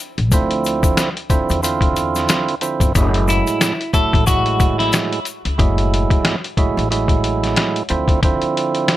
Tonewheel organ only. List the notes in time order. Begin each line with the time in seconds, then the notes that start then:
0.33 D3 F3 C4 E4
1.30 D3 F3 C4 E4
1.63 D3 C4 E4 F4
2.61 D3 F3 C4 E4
2.96 A2 F#3 G#3 E4
3.93 A2 F#3 A3 E4
4.28 A2 F#3 G#3 E4
5.58 A2 F#3 G#3 E4
6.58 A2 F#3 G#3 E4
6.91 A2 F#3 G#3 E4
7.90 D3 F3 C4 E4
8.24 D3 F3 C4 E4